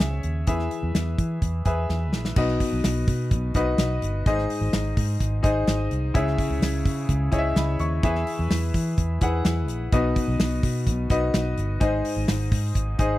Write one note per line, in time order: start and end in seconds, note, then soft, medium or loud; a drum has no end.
0.00 0.19 C#2 loud
0.00 0.49 C#3 medium
0.00 0.47 G#4 medium
0.00 0.49 C#5 medium
0.00 0.48 E5 loud
0.00 snare loud
0.00 closed hi-hat medium
0.23 0.43 D#2 medium
0.23 closed hi-hat medium
0.47 0.67 E2 loud
0.47 1.15 E3 medium
0.47 1.22 G#4 medium
0.47 1.22 B4 medium
0.47 1.22 E5 medium
0.47 kick loud
0.47 closed hi-hat medium
0.59 snare soft
0.71 closed hi-hat medium
0.83 0.93 E2 loud
0.95 1.14 E2 medium
0.95 snare loud
0.95 closed hi-hat medium
1.18 1.38 E3 medium
1.18 kick medium
1.18 closed hi-hat medium
1.42 1.62 E2 medium
1.42 kick medium
1.42 closed hi-hat medium
1.65 1.85 E2 medium
1.65 2.21 G#4 medium
1.65 2.22 B4 medium
1.65 2.22 E5 medium
1.65 kick medium
1.65 closed hi-hat medium
1.89 2.13 E2 loud
1.89 snare medium
2.13 2.33 A#1 medium
2.13 snare medium
2.25 snare medium
2.36 2.56 B1 loud
2.36 3.04 B2 medium
2.36 3.11 D#4 medium
2.36 3.11 F#4 medium
2.36 3.12 B4 medium
2.36 3.12 D#5 loud
2.36 kick loud
2.36 crash loud
2.48 snare soft
2.60 kick medium
2.60 hi-hat pedal medium
2.60 open hi-hat medium
2.73 2.82 B1 loud
2.84 3.04 B1 loud
2.84 snare loud
2.84 hi-hat pedal medium
2.84 open hi-hat loud
3.08 3.33 B2 medium
3.08 kick loud
3.08 hi-hat pedal medium
3.08 open hi-hat medium
3.31 3.51 B1 loud
3.31 kick medium
3.31 hi-hat pedal medium
3.31 open hi-hat medium
3.54 3.74 B1 loud
3.54 4.11 D#4 medium
3.54 4.11 F#4 medium
3.54 4.11 B4 medium
3.54 4.11 D#5 loud
3.54 kick loud
3.54 hi-hat pedal medium
3.54 open hi-hat medium
3.78 3.98 B1 loud
3.78 snare loud
3.78 hi-hat pedal medium
3.78 open hi-hat medium
4.02 4.21 G1 medium
4.02 hi-hat pedal medium
4.02 open hi-hat medium
4.26 4.45 G#1 loud
4.26 4.93 G#2 medium
4.26 5.01 D#4 medium
4.26 5.01 G#4 medium
4.26 5.01 C5 medium
4.26 5.01 D#5 loud
4.26 kick loud
4.26 hi-hat pedal medium
4.26 open hi-hat medium
4.39 snare soft
4.50 hi-hat pedal medium
4.50 open hi-hat medium
4.61 4.71 G#1 loud
4.73 4.92 G#1 medium
4.73 snare loud
4.73 hi-hat pedal medium
4.73 open hi-hat loud
4.97 5.16 G#2 loud
4.97 kick loud
4.97 hi-hat pedal medium
4.97 open hi-hat medium
5.20 5.40 G#1 loud
5.20 kick medium
5.20 hi-hat pedal medium
5.20 open hi-hat medium
5.43 5.63 G#1 loud
5.43 5.99 D#4 medium
5.43 5.99 G#4 medium
5.43 5.99 C5 medium
5.43 6.00 D#5 loud
5.43 kick loud
5.43 hi-hat pedal medium
5.43 open hi-hat medium
5.67 5.87 G#1 loud
5.67 snare loud
5.67 hi-hat pedal medium
5.67 open hi-hat medium
5.91 6.11 C2 medium
5.91 hi-hat pedal medium
5.91 open hi-hat medium
6.14 6.34 C#2 loud
6.14 6.81 C#3 medium
6.14 6.89 E4 medium
6.14 6.89 G#4 medium
6.14 6.89 C#5 medium
6.14 6.89 E5 loud
6.14 kick loud
6.14 hi-hat pedal medium
6.14 open hi-hat medium
6.27 snare soft
6.38 kick loud
6.38 hi-hat pedal medium
6.38 open hi-hat medium
6.50 6.60 C#2 loud
6.62 6.81 C#2 loud
6.62 snare loud
6.62 hi-hat pedal medium
6.62 open hi-hat loud
6.85 7.05 C#3 loud
6.85 kick loud
6.85 hi-hat pedal medium
6.85 open hi-hat medium
7.09 7.28 C#2 loud
7.09 kick medium
7.09 hi-hat pedal medium
7.09 open hi-hat medium
7.32 7.52 C#2 loud
7.32 7.88 E4 medium
7.32 7.88 G#4 medium
7.32 7.89 C#5 medium
7.32 7.39 D#5 medium
7.32 kick medium
7.32 hi-hat pedal medium
7.32 open hi-hat medium
7.38 7.59 E5 loud
7.56 7.76 C#2 loud
7.56 7.79 D#5 medium
7.56 7.79 B5 medium
7.56 snare loud
7.56 hi-hat pedal medium
7.56 open hi-hat medium
7.79 7.99 D#2 loud
7.79 8.02 E5 medium
7.79 8.25 C#6 medium
7.79 hi-hat pedal medium
7.79 open hi-hat medium
8.03 8.23 E2 loud
8.03 8.71 E3 medium
8.03 8.78 E4 medium
8.03 8.78 G#4 medium
8.03 8.78 B4 medium
8.03 8.78 E5 loud
8.03 kick loud
8.03 hi-hat pedal medium
8.03 open hi-hat loud
8.15 snare soft
8.27 hi-hat pedal medium
8.27 open hi-hat medium
8.39 8.49 E2 loud
8.51 8.70 E2 loud
8.51 snare loud
8.51 hi-hat pedal medium
8.51 open hi-hat loud
8.74 8.94 E3 medium
8.74 kick medium
8.74 hi-hat pedal medium
8.74 open hi-hat medium
8.98 9.17 E2 loud
8.98 kick medium
8.98 hi-hat pedal medium
8.98 open hi-hat medium
9.21 9.41 E2 medium
9.21 9.77 E4 medium
9.21 9.78 G#4 medium
9.21 9.78 B4 medium
9.21 9.78 F#5 loud
9.21 kick loud
9.21 hi-hat pedal medium
9.21 open hi-hat medium
9.45 9.69 E2 loud
9.45 snare loud
9.45 hi-hat pedal medium
9.45 open hi-hat medium
9.68 9.88 A#1 medium
9.68 hi-hat pedal medium
9.68 open hi-hat medium
9.92 10.12 B1 loud
9.92 10.60 B2 medium
9.92 10.67 D#4 loud
9.92 10.67 F#4 medium
9.92 10.67 B4 medium
9.92 10.67 D#5 loud
9.92 kick loud
9.92 hi-hat pedal medium
9.92 open hi-hat loud
10.16 kick medium
10.16 hi-hat pedal medium
10.16 open hi-hat medium
10.28 10.38 B1 loud
10.40 10.59 B1 loud
10.40 snare loud
10.40 hi-hat pedal medium
10.40 open hi-hat loud
10.63 10.88 B2 loud
10.63 kick loud
10.63 hi-hat pedal medium
10.63 open hi-hat medium
10.87 11.06 B1 loud
10.87 kick medium
10.87 hi-hat pedal medium
10.87 open hi-hat medium
11.10 11.30 B1 loud
11.10 11.66 D#4 medium
11.10 11.66 F#4 medium
11.10 11.66 B4 medium
11.10 11.67 D#5 loud
11.10 kick loud
11.10 hi-hat pedal medium
11.10 open hi-hat medium
11.34 11.53 B1 loud
11.34 snare loud
11.34 hi-hat pedal medium
11.34 open hi-hat medium
11.57 11.77 G1 loud
11.57 hi-hat pedal medium
11.57 open hi-hat medium
11.80 12.01 G#1 loud
11.80 12.48 G#2 medium
11.80 12.55 D#4 loud
11.80 12.56 G#4 medium
11.80 12.55 C5 medium
11.80 12.56 D#5 loud
11.80 kick loud
11.80 hi-hat pedal medium
11.80 open hi-hat medium
12.05 hi-hat pedal medium
12.05 open hi-hat medium
12.16 12.26 G#1 loud
12.28 12.48 G#1 loud
12.28 snare loud
12.28 hi-hat pedal medium
12.28 open hi-hat medium
12.52 12.71 G#2 loud
12.52 kick loud
12.52 hi-hat pedal medium
12.52 open hi-hat medium
12.75 12.95 G#1 loud
12.75 kick medium
12.75 hi-hat pedal medium
12.75 open hi-hat medium
12.98 13.18 G#1 loud
12.98 13.18 D#4 medium
12.98 13.18 G#4 medium
12.98 13.18 C5 medium
12.98 13.18 D#5 loud
12.98 kick loud
12.98 hi-hat pedal medium
12.98 open hi-hat medium